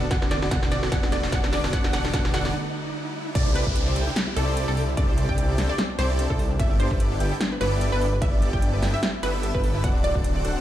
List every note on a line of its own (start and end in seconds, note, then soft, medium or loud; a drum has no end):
0.00 3.32 D3 medium
0.00 3.32 G3 medium
0.00 3.31 A3 medium
0.00 0.05 D4 medium
0.00 3.31 F#4 medium
0.00 riser medium
0.11 0.40 E1 loud
0.11 0.40 B3 medium
0.11 0.40 F#4 medium
0.11 0.15 D5 medium
0.11 0.28 F#5 loud
0.11 kick loud
0.11 snare medium
0.11 closed hi-hat medium
0.22 0.25 D4 medium
0.22 snare medium
0.31 0.38 A4 medium
0.31 0.49 D5 medium
0.31 snare medium
0.31 closed hi-hat medium
0.42 0.50 E1 loud
0.42 0.50 B3 medium
0.42 0.50 D4 medium
0.42 0.50 F#4 medium
0.42 0.48 F#4 medium
0.42 0.50 A4 medium
0.42 0.50 D5 medium
0.42 snare medium
0.51 0.81 E1 loud
0.51 0.80 B3 medium
0.51 0.80 D4 medium
0.51 0.80 F#4 medium
0.51 0.80 A4 medium
0.51 0.55 D5 medium
0.51 0.80 D5 medium
0.51 0.69 F#5 loud
0.51 kick loud
0.51 snare loud
0.51 closed hi-hat medium
0.63 0.66 D4 medium
0.63 snare medium
0.72 0.78 A4 medium
0.72 0.89 D5 medium
0.72 snare loud
0.72 closed hi-hat medium
0.83 0.90 E1 loud
0.83 0.90 B3 medium
0.83 0.90 D4 medium
0.83 0.90 F#4 medium
0.83 0.88 F#4 medium
0.83 0.90 A4 medium
0.83 0.90 D5 medium
0.83 snare medium
0.92 1.21 E1 medium
0.92 1.21 B3 medium
0.92 1.21 D4 medium
0.92 1.21 F#4 medium
0.92 1.21 A4 medium
0.92 1.21 D5 medium
0.92 0.96 D5 medium
0.92 1.09 F#5 loud
0.92 kick loud
0.92 snare loud
0.92 closed hi-hat medium
1.03 1.06 D4 medium
1.03 snare medium
1.12 1.19 A4 medium
1.12 1.30 D5 medium
1.12 snare loud
1.12 closed hi-hat medium
1.23 1.31 E1 loud
1.23 1.31 B3 medium
1.23 1.31 D4 medium
1.23 1.31 F#4 medium
1.23 1.29 F#4 medium
1.23 1.31 A4 medium
1.23 1.31 D5 medium
1.23 snare medium
1.32 1.62 E1 loud
1.32 1.61 B3 medium
1.32 1.61 D4 medium
1.32 1.61 F#4 medium
1.32 1.61 A4 medium
1.32 1.61 D5 medium
1.32 1.36 D5 medium
1.32 1.50 F#5 loud
1.32 kick loud
1.32 snare loud
1.32 closed hi-hat medium
1.44 1.47 D4 medium
1.44 snare medium
1.53 1.59 A4 medium
1.53 1.70 D5 medium
1.53 snare loud
1.53 open hi-hat medium
1.64 1.71 E1 loud
1.64 1.72 B3 medium
1.64 1.72 D4 medium
1.64 1.72 F#4 medium
1.64 1.69 F#4 medium
1.64 1.72 A4 medium
1.64 1.72 D5 medium
1.64 snare medium
1.73 1.91 E1 loud
1.73 1.92 B3 medium
1.73 1.92 D4 medium
1.73 1.92 F#4 medium
1.73 1.92 A4 medium
1.73 1.77 D5 medium
1.73 1.92 D5 medium
1.73 1.91 F#5 loud
1.73 kick loud
1.73 snare loud
1.73 closed hi-hat medium
1.84 1.87 D4 medium
1.84 snare medium
1.93 2.12 E1 loud
1.93 2.12 B3 medium
1.93 2.12 D4 medium
1.93 2.12 F#4 medium
1.93 2.12 A4 medium
1.93 2.12 D5 medium
1.93 1.97 D5 medium
1.93 2.11 F#5 loud
1.93 snare loud
1.93 closed hi-hat medium
2.05 2.08 D4 medium
2.05 snare medium
2.13 2.32 E1 loud
2.13 2.32 B3 medium
2.13 2.32 D4 medium
2.13 2.32 F#4 medium
2.13 2.32 A4 medium
2.13 2.32 D5 medium
2.13 2.18 D5 medium
2.13 2.31 F#5 loud
2.13 kick loud
2.13 snare loud
2.13 closed hi-hat medium
2.25 2.28 D4 medium
2.25 snare medium
2.34 2.52 E1 loud
2.34 2.53 B3 medium
2.34 2.53 D4 medium
2.34 2.53 F#4 medium
2.34 2.53 A4 medium
2.34 2.38 D5 medium
2.34 2.53 D5 medium
2.34 2.51 F#5 loud
2.34 snare loud
2.34 closed hi-hat medium
2.45 2.48 D4 medium
2.45 snare loud
3.35 3.64 C2 loud
3.35 3.64 C4 medium
3.35 3.64 E4 medium
3.35 3.64 G4 medium
3.35 3.64 A4 medium
3.35 3.39 C5 medium
3.35 3.53 D5 loud
3.35 3.64 D5 medium
3.35 kick loud
3.35 closed hi-hat medium
3.35 crash loud
3.35 downlifter medium
3.46 3.50 D4 medium
3.55 3.62 G4 medium
3.55 3.73 B4 medium
3.55 closed hi-hat medium
3.67 3.94 C2 loud
3.67 3.94 C4 medium
3.67 3.72 E4 medium
3.67 3.94 E4 medium
3.67 3.94 G4 medium
3.67 3.94 A4 medium
3.67 3.94 D5 medium
3.67 kick medium
3.76 3.82 D4 medium
3.76 closed hi-hat medium
3.87 3.92 C5 loud
3.96 4.09 C2 loud
3.96 4.10 C4 medium
3.96 4.10 E4 medium
3.96 4.10 G4 medium
3.96 4.10 A4 medium
3.96 4.00 C5 medium
3.96 4.10 G5 medium
3.96 closed hi-hat medium
4.07 4.10 D4 medium
4.16 4.23 G4 medium
4.16 snare loud
4.16 closed hi-hat medium
4.28 4.33 E4 medium
4.36 4.66 C2 loud
4.36 4.65 C4 loud
4.36 4.43 D4 medium
4.36 4.65 E4 medium
4.36 4.65 G4 medium
4.36 4.63 A4 medium
4.36 4.65 A4 medium
4.36 4.65 D5 loud
4.36 closed hi-hat medium
4.48 4.53 C5 loud
4.57 4.61 C5 medium
4.57 closed hi-hat medium
4.68 4.96 C2 loud
4.68 4.81 C4 medium
4.68 4.71 D4 medium
4.68 4.81 E4 medium
4.68 4.81 G4 medium
4.68 4.93 A4 loud
4.68 4.81 A4 medium
4.68 4.81 D5 medium
4.77 4.84 G4 medium
4.77 open hi-hat medium
4.88 4.94 E4 medium
4.97 5.27 C2 loud
4.97 5.26 C4 medium
4.97 5.04 D4 medium
4.97 5.26 E4 medium
4.97 5.26 G4 medium
4.97 5.26 A4 medium
4.97 5.26 D5 medium
4.97 5.24 D5 loud
4.97 5.26 D5 medium
4.97 kick loud
4.97 closed hi-hat medium
5.09 5.14 C5 loud
5.18 5.22 C5 medium
5.18 closed hi-hat medium
5.29 5.56 C2 loud
5.29 5.56 C4 medium
5.29 5.32 D4 medium
5.29 5.56 E4 medium
5.29 5.56 G4 medium
5.29 5.56 A4 medium
5.29 5.56 D5 medium
5.29 5.63 G5 medium
5.29 kick medium
5.38 5.44 G4 medium
5.38 closed hi-hat medium
5.49 5.54 E4 medium
5.58 5.71 C2 loud
5.58 5.72 C4 medium
5.58 5.65 D4 medium
5.58 5.72 E4 medium
5.58 5.72 G4 medium
5.58 5.72 A4 medium
5.58 5.72 G5 medium
5.58 snare medium
5.58 closed hi-hat medium
5.69 5.75 C5 loud
5.69 5.95 D5 loud
5.78 5.82 C5 medium
5.78 snare loud
5.78 closed hi-hat medium
5.90 5.93 D4 medium
5.99 6.28 C2 loud
5.99 6.27 C4 medium
5.99 6.27 E4 medium
5.99 6.27 G4 medium
5.99 6.05 G4 medium
5.99 6.28 A4 medium
5.99 6.25 C5 loud
5.99 6.28 D5 loud
5.99 closed hi-hat medium
6.10 6.15 E4 medium
6.19 6.26 D4 medium
6.19 closed hi-hat medium
6.30 6.58 C2 loud
6.30 6.43 C4 medium
6.30 6.43 E4 medium
6.30 6.43 A4 medium
6.30 6.55 A4 medium
6.30 6.36 C5 loud
6.30 6.43 D5 medium
6.30 kick medium
6.39 6.43 C5 medium
6.39 open hi-hat medium
6.51 6.54 D4 medium
6.59 6.89 G1 loud
6.59 6.88 B3 medium
6.59 6.88 E4 medium
6.59 6.88 G4 medium
6.59 6.66 G4 medium
6.59 6.88 A4 medium
6.59 6.88 D5 medium
6.59 6.77 E5 loud
6.59 kick loud
6.59 closed hi-hat medium
6.71 6.76 E4 medium
6.80 6.86 D4 medium
6.80 6.97 C5 medium
6.80 closed hi-hat medium
6.91 7.19 G1 loud
6.91 7.18 B3 medium
6.91 7.18 E4 medium
6.91 7.18 G4 medium
6.91 7.18 A4 medium
6.91 6.96 B4 loud
6.91 7.18 D5 medium
6.91 kick medium
7.00 7.04 B4 medium
7.00 closed hi-hat medium
7.11 7.15 D4 medium
7.20 7.33 G1 loud
7.20 7.35 B3 medium
7.20 7.35 E4 medium
7.20 7.35 G4 medium
7.20 7.27 G4 medium
7.20 7.35 A4 medium
7.20 7.35 G5 medium
7.20 closed hi-hat medium
7.32 7.37 E4 medium
7.41 7.47 D4 medium
7.41 snare loud
7.41 closed hi-hat medium
7.52 7.57 B4 loud
7.61 7.90 G1 loud
7.61 7.90 B3 loud
7.61 7.90 E4 medium
7.61 7.90 G4 medium
7.61 7.90 A4 medium
7.61 7.87 B4 loud
7.61 7.65 B4 medium
7.61 7.90 D5 loud
7.61 closed hi-hat medium
7.72 7.75 D4 medium
7.81 7.88 G4 medium
7.81 closed hi-hat medium
7.92 8.20 G1 loud
7.92 8.05 B3 medium
7.92 7.98 E4 medium
7.92 8.05 E4 medium
7.92 8.05 G4 medium
7.92 8.05 A4 medium
7.92 8.18 B4 loud
7.92 8.05 D5 medium
8.01 8.08 D4 medium
8.01 open hi-hat medium
8.13 8.18 B4 loud
8.22 8.51 G1 loud
8.22 8.51 B3 medium
8.22 8.51 E4 medium
8.22 8.51 G4 medium
8.22 8.51 A4 medium
8.22 8.26 B4 medium
8.22 8.51 D5 medium
8.22 8.48 E5 medium
8.22 kick loud
8.22 closed hi-hat medium
8.33 8.36 D4 medium
8.42 8.49 G4 medium
8.42 closed hi-hat medium
8.53 8.81 G1 loud
8.53 8.80 B3 medium
8.53 8.80 E4 medium
8.53 8.58 E4 medium
8.53 8.80 G4 medium
8.53 8.80 A4 medium
8.53 8.80 D5 medium
8.53 8.87 G5 medium
8.53 kick medium
8.62 8.69 D4 medium
8.62 closed hi-hat medium
8.73 8.79 B4 loud
8.82 8.95 G1 loud
8.82 8.97 B3 medium
8.82 8.97 E4 medium
8.82 8.97 G4 medium
8.82 8.97 A4 medium
8.82 8.86 B4 medium
8.82 8.97 G5 medium
8.82 snare medium
8.82 closed hi-hat medium
8.94 8.97 D4 medium
8.94 9.19 E5 loud
9.03 9.09 G4 medium
9.03 snare loud
9.03 closed hi-hat medium
9.14 9.19 E4 medium
9.23 9.52 G1 loud
9.23 9.52 B3 medium
9.23 9.52 E4 medium
9.23 9.52 G4 medium
9.23 9.52 A4 medium
9.23 9.50 B4 loud
9.23 9.33 D5 medium
9.23 9.52 E5 medium
9.23 closed hi-hat medium
9.34 9.42 B4 medium
9.43 9.53 A4 medium
9.43 closed hi-hat medium
9.55 9.82 G1 loud
9.55 9.82 B3 medium
9.55 9.82 E4 medium
9.55 9.60 G4 loud
9.55 9.82 G4 medium
9.55 9.82 B4 medium
9.55 9.80 B4 loud
9.55 kick medium
9.64 9.68 A4 loud
9.64 open hi-hat medium
9.75 9.80 E4 loud
9.84 10.13 D1 loud
9.84 10.13 C4 medium
9.84 10.13 D4 medium
9.84 10.13 F#4 medium
9.84 10.13 A4 medium
9.84 10.13 D5 medium
9.84 9.88 D5 medium
9.84 10.13 D5 medium
9.84 10.01 F#5 loud
9.84 kick loud
9.84 closed hi-hat medium
9.84 ride soft
9.95 9.98 D4 medium
10.04 10.22 D5 medium
10.04 10.11 D5 medium
10.04 closed hi-hat medium
10.15 10.43 D1 loud
10.15 10.42 C4 medium
10.15 10.43 D4 medium
10.15 10.21 F#4 medium
10.15 10.42 F#4 medium
10.15 10.43 A4 medium
10.15 10.42 D5 medium
10.15 10.43 D5 medium
10.15 kick medium
10.24 10.31 D4 medium
10.24 closed hi-hat medium
10.36 10.41 D5 loud
10.45 10.57 D1 loud
10.45 10.59 C4 medium
10.45 10.59 D4 medium
10.45 10.59 F#4 medium
10.45 10.59 A4 medium
10.45 10.49 D5 medium
10.45 10.59 F#5 medium
10.45 closed hi-hat medium
10.56 10.59 D4 medium